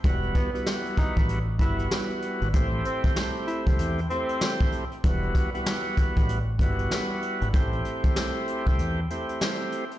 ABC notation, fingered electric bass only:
X:1
M:4/4
L:1/16
Q:"Swing 16ths" 1/4=96
K:Em
V:1 name="Fingered electric bass" clef=bass
E,,,2 z4 z A,,,3 G,,,2 z3 ^G,,, | A,,,2 z4 z C,, E,,2 z6 | E,,,2 z4 z A,,,3 G,,,2 z3 ^G,,, | A,,,2 z4 z C,, E,,2 z6 |]